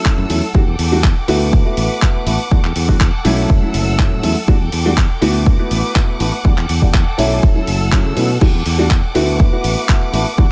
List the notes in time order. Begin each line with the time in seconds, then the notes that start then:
Already playing: A4 F#5 E6
0.05 F#3 C#4 E4, kick, clap
0.18 F#2
0.30 E2 F#3 A3 C#4 E4, open hi-hat
0.54 E2 G3 A3 D4 F#4 G5 D6, kick
0.67 E2
0.79 E2, open hi-hat
0.92 G3 A3 D4 F#4
1.04 kick, clap
1.28 D2 A3 B3 E4 F#4, open hi-hat
1.53 B4, kick
1.65 A3 B3 E4 F#4
1.77 A1, open hi-hat
2.02 A3 B3 E4 F#4, kick, clap
2.26 A1 A3 B3 E4 F#4, open hi-hat
2.51 E2 G3 A3 D4 F#4 A4 G5, kick
2.64 E2, clap
2.76 E2, open hi-hat
2.88 G3 A3 D4 F#4, kick
3.01 kick, clap
3.25 B1 F#3 A3 C#4 E4, open hi-hat
3.50 F#1 E6, kick
3.62 F#3 A3 C#4 E4, muted fingered electric bass stroke
3.74 F#1, open hi-hat
3.98 F#3 A3, kick, clap
4.12 A2
4.23 E2 F#3 A3 C#4 E4, open hi-hat
4.48 E2 G3 A3 D4 F#4 G5 D6, kick
4.61 E2
4.72 E2, open hi-hat
4.85 G3 A3 D4 F#4
4.97 kick, clap
5.21 D2 A3 B3 E4 F#4, open hi-hat
5.46 B4 F#5, kick
5.59 A3 B3 E4 F#4
5.71 A1, open hi-hat
5.95 A3 B3 E4 F#4, kick, clap
6.20 A1 A3 B3 E4 F#4, open hi-hat
6.44 E2 G3 A3 D4 F#4 A4 G5, kick
6.57 E2, clap
6.69 E2, open hi-hat
6.82 G3 A3 D4 F#4, kick
6.94 kick, clap
7.18 B1 F#3 A3 C#4 E4, open hi-hat
7.43 F#5 E6, kick
7.55 F#3 A3 C#4 E4, muted fingered electric bass stroke
7.67 F#1, open hi-hat
7.92 F#2 F#3 A3 C#4 E4, kick, clap
8.05 C#3
8.16 B2 F#3 A3 C#4 E4, open hi-hat
8.41 E2 G3 A3 D4 F#4 G5 D6, kick, crash
8.54 E2
8.66 E2, open hi-hat
8.78 G3 A3 D4 F#4
8.90 kick, clap
9.15 D2 A3 B3 E4 F#4, open hi-hat
9.39 B4, kick
9.52 A3 B3 E4 F#4
9.64 A1, open hi-hat
9.88 A3 B3 F#4, kick, clap
10.13 A1 A3 B3 E4 F#4, open hi-hat
10.38 E2 G3 A3 D4 F#4 A4 G5, kick